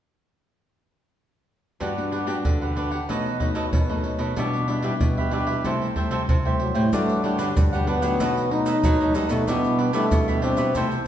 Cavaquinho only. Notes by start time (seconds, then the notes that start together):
1.80 D4 G4 B4 F#5
2.11 D4 G4 B4 F#5
2.27 D4 G4 B4 F#5
2.61 G4 B4 F#5
2.76 D4 G4 B4 F#5
2.91 G4 B4 F#5
3.09 D#4 A4 B4 D#5
3.40 D#4 A4 B4 D#5
3.55 D#4 A4 B4 D#5
3.89 A4 B4 D#5
4.19 A4 B4 D#5
4.37 D4 G4 B4 E5
4.68 D4 G4 B4 E5
4.83 D4 G4 B4 E5
5.18 G4 B4 E5
5.32 D4 G4 B4 E5
5.47 G4 B4 E5
5.65 A4 C5 E5 G5
5.96 A4 C5 E5 G5
6.11 A4 C5 E5 G5
6.45 C5 E5 G5
6.75 C5 E5 G5
6.93 D4 G4 B4 F#5
7.23 D4 G4 B4 F#5
7.38 D4 G4 B4 F#5
7.73 G4 B4 F#5
7.87 D4 G4 B4 F#5
8.02 G4 B4 F#5
8.20 D#4 A4 B4 D#5
8.66 D#4 A4 B4 D#5
8.84 D#4 A4 B4 D#5
9.01 A4 B4 D#5
9.15 D#4 A4 B4 D#5
9.30 A4 B4 D#5
9.47 D4 G4 B4 E5
9.78 D4 G4 B4 E5
9.93 D4 G4 B4 E5
10.28 G4 B4 E5
10.42 D4 G4 B4 E5
10.57 G4 B4 E5
10.75 A4 C5 E5 G5